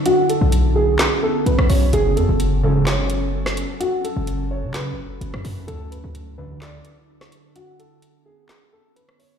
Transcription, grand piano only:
X:1
M:4/4
L:1/8
Q:1/4=128
K:F#m
V:1 name="Grand piano"
F A2 G2 A B c | G A2 A c4 | F A2 c B4 | A B2 B d4 |
F A2 G2 A B c |]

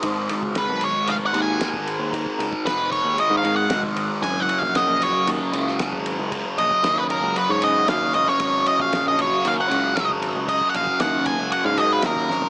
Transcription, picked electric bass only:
X:1
M:4/4
L:1/16
Q:1/4=115
K:F#
V:1 name="Picked electric bass" clef=bass
G,,,2 z C,,2 B,,,2 z E,,, z D,,3 G,,,2 D,,- | D,, z C,, z E,,,3 D,, z G,,3 E,,,2 G,,, z | G,,,2 z A,,,2 A,,,2 z D,, z C,,3 G,,,2 C,,- | C,, z A,,, z D,,3 C,, z G,,3 D,,2 G,,, z |
G,,,2 z A,,,2 A,,,2 z D,, z C,,3 G,,,2 C,,- | C,, z A,,, z D,,3 C,, z G,,3 D,,2 G,,, z |]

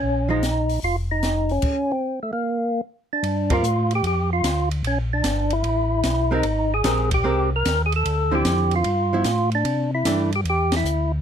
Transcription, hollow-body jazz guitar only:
X:1
M:4/4
L:1/8
Q:"Swing" 1/4=150
K:Cm
V:1 name="Hollow-body jazz guitar"
z [F,A,E] z6 | z8 | [K:Gm] z [G,CFB] z6 | z6 z [_A,CGB] |
z2 [_A,CGB] z [A,CGB] z3 | z [D,F,C=E]3 z [F,=B,E] z2 | z2 [=E,A,D] z4 z |]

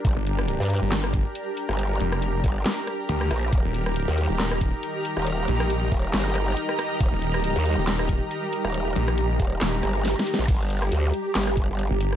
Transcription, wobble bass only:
X:1
M:4/4
L:1/16
Q:"Swing 16ths" 1/4=138
K:Gm
V:1 name="Wobble bass" clef=bass
G,,, z4 G,,2 z8 G,,,- | G,,,2 z4 G,,,2 z6 B,,,2 | E,,, z4 E,,2 z8 E,,,- | E,,,2 z4 E,,,2 G,,,4 z4 |
E,,, z4 E,,2 z8 E,,,- | E,,,2 z4 E,,,2 z2 G,,,3 z2 B,,, | G,,,4 D,,2 z2 G,,,3 G,,,2 z3 |]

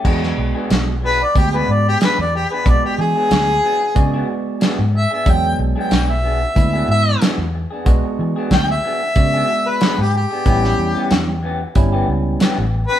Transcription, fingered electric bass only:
X:1
M:4/4
L:1/16
Q:"Swing 16ths" 1/4=92
K:Emix
V:1 name="Fingered electric bass" clef=bass
E,,2 B,,, z B,,,4 D,,2 G,,2 z E,,2 z | B,,, z E, z D,,2 z2 C,2 z3 G,,2 z | E,,2 B,,, z B,,,4 D,,2 G,,2 z E,,2 z | B,,, z E, z D,,2 z2 C,2 z3 G,,2 z |
A,,,2 E,, z E,,4 =G,,,2 C,,2 z A,,,2 z |]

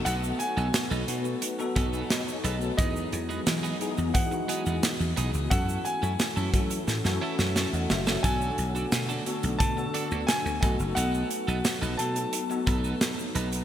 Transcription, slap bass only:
X:1
M:4/4
L:1/16
Q:1/4=88
K:Bmix
V:1 name="Slap bass" clef=bass
B,,,2 z B,,, z B,,, B,,2 z2 B,,,2 z2 B,,,2 | E,,2 E,,2 E,2 z E,, E,2 z E,, z E,, B,,, C,, | F,,2 z F,, z F,, F,2 A,, F,, z F,,2 E,, F,,,2 | B,,,2 B,,,2 B,,2 z B,,, B,,2 z =D,, z D,, B,,, F,,, |
B,,,2 z B,,, z B,,, B,,2 z2 B,,,2 z2 B,,,2 |]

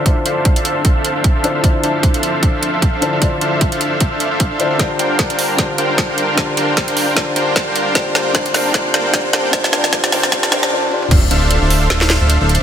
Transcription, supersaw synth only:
X:1
M:4/4
L:1/16
Q:"Swing 16ths" 1/4=152
K:Dm
V:1 name="Supersaw synth"
[DAcef] z [DAcef]3 [DAcef]3 [DAcef]3 [DAcef]2 [DAcef]2 [DAcef] | [DAcef] z [DAcef]3 [DAcef]3 [DAcef]3 [DAcef]2 [DAcef]2 [DAcef] | [DAcf] z [DAcef]3 [DAcef]3 [DAcef]3 [DAcef]2 [DAcef]2 [DAcef] | [DBcfg] z [DBcfg]3 [DBcfg]3 [DBcfg] z [DBcfg]3 [DBcfg]3 |
[DBcfg] z [DBcfg]3 [DBcfg]3 [DBc] z [DBcfg]3 [DBcfg]3 | z2 [DBcfg]2 [DB] z [DBcfg]2 [DBcfg] z [DBcfg]2 [DBcfg] z [DBcfg]2 | D z [DBcfg] z [DBcfg] z [DBcfg] z [DBcfg] z [DBcfg] z4 z | [DAcef] z [DAcef]3 [DAcef]3 [DAcef]3 [DAcef]2 [DAcef]2 z |]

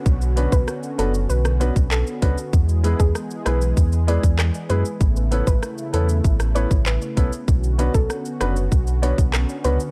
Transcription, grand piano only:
X:1
M:4/4
L:1/8
Q:1/4=97
K:Bdor
V:1 name="Grand piano"
z [B,CDFB] z [B,CDFB] z [B,CDFB] z [B,CDFB] | z [G,B,EGB] z [G,B,EGB] z [G,B,EGB] z [G,B,EGB] | z [B,CEAB] z [B,CEAB] z [B,CEAB] z [B,CEAB] | z [B,CDFB] z [B,CDFB] z [B,CDFB] z [B,CDFB] |]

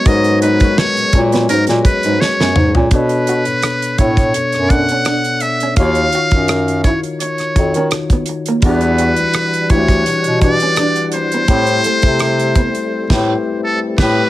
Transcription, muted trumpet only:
X:1
M:4/4
L:1/16
Q:"Swing 16ths" 1/4=84
K:Bmix
V:1 name="Muted trumpet"
d2 B2 c2 z2 ^A2 B2 c3 z | B6 c4 f4 e2 | ^e6 c2 c4 z4 | B6 c4 =d4 ^B2- |
^B12 A2 =B2 |]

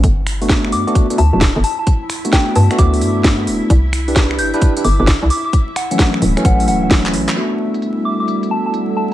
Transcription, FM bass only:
X:1
M:4/4
L:1/16
Q:"Swing 16ths" 1/4=131
K:G
V:1 name="FM bass" clef=bass
G,,,6 G,, z3 D,, D,,,2 G,,, z2 | z6 G,, z D,,2 G,,4 D,,, z | C,,6 G,,, z3 G,,, G,,,2 C,, z2 | z6 D,,, z A,,,2 D,,,4 A,,, z |
z16 |]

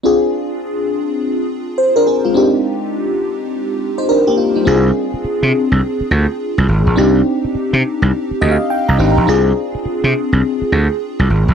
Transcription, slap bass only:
X:1
M:4/4
L:1/16
Q:"Swing 16ths" 1/4=104
K:Bbmix
V:1 name="Slap bass" clef=bass
z16 | z16 | C,,2 z3 C, z C,, z2 D,, z2 C,, A,,, B,,, | C,,2 z3 C, z C,, z2 D,, z2 C,, A,,, B,,, |
C,,2 z3 C, z C,, z2 D,, z2 C,, A,,, B,,, |]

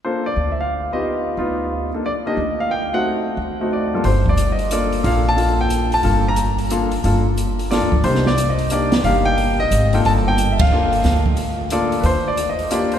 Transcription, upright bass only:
X:1
M:3/4
L:1/8
Q:"Swing" 1/4=180
K:Gm
V:1 name="Upright bass" clef=bass
z2 D,,3 z | z2 D,,3 z | z2 D,,3 z | z2 D,,3 z |
G,,,6 | B,,,6 | G,,,6 | G,,,4- (3G,,, D,, G,, |
C,,6 | G,,,4 _A,,,2 | G,,,4 ^F,,,2 | D,,6 |
E,,6 |]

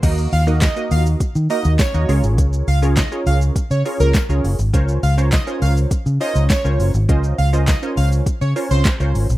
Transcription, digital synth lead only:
X:1
M:4/4
L:1/16
Q:1/4=102
K:Bbm
V:1 name="Digital synth lead"
z2 f z e2 f z3 e2 d3 z | z2 f z e2 f z2 d z B2 z3 | z2 f z e2 f z3 e2 d3 z | z2 f z e2 f z2 d z c2 z3 |]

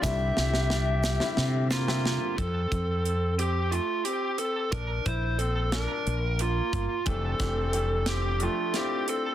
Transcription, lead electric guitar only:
X:1
M:7/8
L:1/8
Q:1/4=90
K:F
V:1 name="Lead electric guitar"
e4- e F2 | A3 G F G A | B c A B2 F2 | A3 G F G A |]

